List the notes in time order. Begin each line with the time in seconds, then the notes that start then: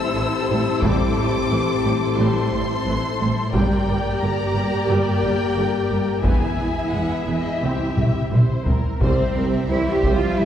Already playing: C4 E4 G4 A4 C5 E6
0.15 A1 A2 E3
0.49 A1 A2 G3
0.82 A1 A2 G3 D6, taiko
1.16 A1 A2 G3
1.50 A1 A2 E3
1.84 A1 A2 G3
2.18 A1 A2 G3 C6
2.52 A1 A2 G3
2.86 A1 A2 E3
3.20 A1 A2 G3
3.53 G1 G2 G3 A#3 G4 A#4 D5 G5, taiko
3.87 G1 G2 G3
4.21 G1 G2 D3 A#5
4.55 G1 G2 G3
4.88 G1 G2 G3 G5
5.23 G1 G2 G3
5.56 G1 G2 D3
5.91 G1 G2 G3
6.23 E1 E2 B3 E4 G#4 E5 G#5, taiko
6.58 E1 E2 B3
6.92 E1 E2 G#3 F#5
7.15 E5
7.27 E1 E2 B3
7.38 D#5
7.61 C2 C4 G4 E5
7.97 C2 C4, taiko mid
8.32 C2 G3 C5, taiko mid
8.66 C2 C4 A#4, taiko low
9.00 C2 C3 G3 C4 G4 C5 E5, taiko
9.35 C2 G3 A#4
9.69 C2 E3 G3 E4 C5
9.92 G3 G4
10.03 C2 G3 C5, taiko
10.15 F3 F4
10.37 C2 E3 G3 E4 A#4